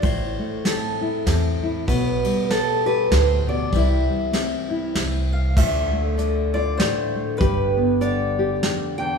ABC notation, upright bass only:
X:1
M:3/4
L:1/8
Q:"Swing" 1/4=98
K:Ddor
V:1 name="Upright bass" clef=bass
A,,, z3 E,,2 | B,,, z3 D,,2 | C,, z3 C,,2 | D,,4 z2 |
G,,,4 z2 |]